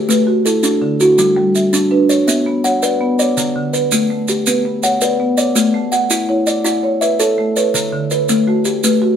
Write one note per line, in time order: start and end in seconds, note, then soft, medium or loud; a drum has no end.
0.00 0.26 F#4 medium
0.00 0.46 G4 medium
0.09 0.45 A3 medium
0.09 0.64 B4 medium
0.09 maracas medium
0.27 0.62 F#4 medium
0.45 0.99 E4 medium
0.45 1.00 A4 medium
0.45 maracas medium
0.63 1.00 D4 medium
0.63 1.18 F#4 medium
0.63 maracas medium
0.82 1.18 D3 medium
1.00 1.55 E4 medium
1.00 1.37 F#4 medium
1.00 maracas medium
1.18 1.55 G3 medium
1.18 maracas medium
1.36 1.73 G3 medium
1.55 2.10 E5 medium
1.55 maracas medium
1.73 2.10 D4 medium
1.73 maracas medium
1.91 2.28 D4 medium
1.91 2.46 B4 medium
2.09 2.46 C#5 medium
2.09 maracas soft
2.27 2.64 B3 medium
2.27 2.64 E5 medium
2.27 maracas medium
2.46 2.83 B3 medium
2.64 3.18 C#5 medium
2.64 3.19 F#5 medium
2.64 maracas medium
2.83 3.19 B4 medium
2.83 3.37 D5 medium
2.83 maracas medium
3.01 3.37 B3 medium
3.19 3.74 C#5 medium
3.19 3.56 D5 medium
3.19 maracas medium
3.37 3.74 D3 medium
3.37 maracas medium
3.56 3.92 D3 medium
3.73 4.28 B4 medium
3.73 maracas soft
3.92 4.28 A3 medium
3.92 maracas medium
4.10 4.47 A3 medium
4.28 4.65 G4 medium
4.28 maracas medium
4.46 4.83 B3 medium
4.46 4.83 B4 medium
4.46 maracas medium
4.65 5.01 B3 medium
4.83 5.37 C#5 medium
4.83 5.38 F#5 medium
4.83 maracas medium
5.01 5.38 B4 medium
5.01 5.56 D5 medium
5.01 maracas medium
5.20 5.56 B3 medium
5.38 5.92 C#5 medium
5.38 5.74 D5 medium
5.38 maracas medium
5.55 5.92 A3 medium
5.55 maracas medium
5.74 6.11 A3 medium
5.92 6.47 F#5 medium
5.92 maracas medium
6.10 6.47 E4 medium
6.10 maracas medium
6.29 6.65 E4 medium
6.29 6.82 C#5 medium
6.47 7.02 D5 medium
6.47 maracas medium
6.64 7.01 E4 medium
6.64 7.20 F#5 medium
6.64 maracas medium
6.83 7.19 C#5 medium
7.01 7.55 B4 medium
7.01 7.56 E5 medium
7.01 maracas medium
7.20 7.56 A4 medium
7.20 7.75 C#5 medium
7.20 maracas medium
7.38 7.75 A3 medium
7.56 8.10 B4 medium
7.56 7.93 C#5 medium
7.56 maracas medium
7.74 8.11 D3 medium
7.74 maracas medium
7.93 8.29 D3 medium
8.11 8.66 B4 medium
8.11 maracas medium
8.29 8.66 A3 medium
8.29 maracas medium
8.47 8.84 A3 medium
8.47 9.01 F#4 medium
8.65 9.16 G4 medium
8.65 maracas medium
8.84 9.16 A3 medium
8.84 9.16 B4 medium
8.84 maracas medium
9.02 9.16 F#4 medium